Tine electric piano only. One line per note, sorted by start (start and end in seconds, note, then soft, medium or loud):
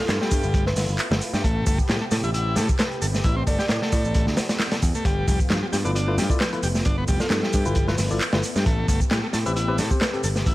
5.85 5.96 E4 medium
5.85 5.95 F4 medium
5.85 5.95 A4 medium
5.85 5.96 B4 medium
6.08 6.14 E4 loud
6.08 6.14 F4 medium
6.08 6.14 A4 medium
6.08 6.14 B4 loud
6.30 6.41 E4 medium
6.30 6.41 F4 medium
6.30 6.41 A4 medium
6.30 6.41 D5 medium
6.53 6.59 E4 medium
6.53 6.59 F4 medium
6.53 6.59 A4 medium
6.53 6.59 B4 medium
7.66 7.76 E4 medium
7.66 7.76 F4 medium
7.66 7.76 A4 medium
7.66 7.76 B4 medium
7.88 7.95 E4 loud
7.88 7.95 F4 medium
7.88 7.95 A4 medium
7.88 7.95 B4 loud
8.11 8.21 E4 medium
8.11 8.21 F4 medium
8.11 8.21 A4 medium
8.11 8.21 D5 medium
8.33 8.40 E4 medium
8.33 8.40 F4 medium
8.33 8.40 A4 medium
8.33 8.40 B4 medium
9.46 9.56 C4 medium
9.46 9.56 G4 medium
9.46 9.56 B4 medium
9.68 9.75 C4 loud
9.68 9.75 G4 medium
9.68 9.75 B4 loud
9.91 10.01 C4 medium
9.91 10.01 G4 medium
9.91 10.01 C5 medium
10.13 10.20 C4 medium
10.13 10.20 G4 medium
10.13 10.20 A4 medium